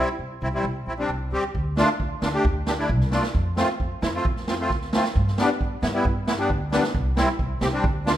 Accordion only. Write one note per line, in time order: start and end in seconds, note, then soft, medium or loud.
0.43 0.48 C4 medium
0.43 0.48 E4 medium
0.54 0.65 G3 medium
0.54 0.65 C4 medium
0.54 0.65 E4 medium
0.87 0.93 C4 medium
0.87 0.93 E4 medium
0.98 1.10 G3 medium
0.98 1.10 C4 medium
0.98 1.10 D4 medium
1.32 1.44 G3 medium
1.32 1.44 C4 medium
1.32 1.44 G4 medium
1.78 1.89 A3 medium
1.78 1.89 D4 medium
1.78 1.89 F4 medium
2.23 2.28 D4 medium
2.23 2.29 F4 medium
2.33 2.45 A3 medium
2.33 2.45 D4 medium
2.33 2.45 G4 medium
2.67 2.73 D4 medium
2.67 2.73 G4 medium
2.78 2.90 A3 medium
2.78 2.90 D4 medium
2.78 2.90 E4 medium
3.11 3.23 A3 medium
3.11 3.23 D4 medium
3.11 3.24 F4 medium
3.57 3.68 A3 medium
3.57 3.69 C4 medium
3.57 3.69 F4 medium
4.03 4.08 C4 medium
4.03 4.09 E4 medium
4.15 4.26 A3 medium
4.15 4.26 C4 medium
4.15 4.26 F4 medium
4.49 4.54 C4 medium
4.49 4.54 F4 medium
4.60 4.71 A3 medium
4.60 4.71 C4 medium
4.60 4.71 F4 medium
4.94 5.04 A3 medium
4.94 5.05 C4 medium
4.94 5.05 F4 medium
5.39 5.49 G3 medium
5.39 5.49 B3 medium
5.39 5.50 D4 medium
5.83 5.88 B3 medium
5.83 5.89 E4 medium
5.93 6.05 G3 medium
5.93 6.05 B3 medium
5.93 6.05 E4 medium
6.27 6.33 B3 medium
6.27 6.33 E4 medium
6.38 6.50 G3 medium
6.38 6.50 B3 medium
6.38 6.50 D4 medium
6.72 6.83 G3 medium
6.72 6.83 B3 medium
6.72 6.84 D4 medium
7.17 7.28 G3 medium
7.17 7.28 C4 medium
7.17 7.29 E4 medium
7.61 7.67 C4 medium
7.61 7.68 G4 medium
7.73 7.84 G3 medium
7.73 7.85 C4 medium
7.73 7.85 D4 medium
8.06 8.12 D4 medium
8.06 8.13 F4 medium